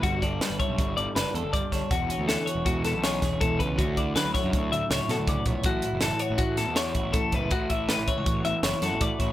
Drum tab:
HH |xxxxxxxxxx|xxxxxxxxxx|xxxxxxxxxx|xxxxxxxxxx|
SD |--o---o--o|--o--ooo--|--oo--oo--|--o--oo---|
BD |oo-oo---oo|o---o--ooo|oo-oo---oo|o---o--ooo|

HH |xxxxxxxxxx|
SD |--o---oo--|
BD |oo-oo---oo|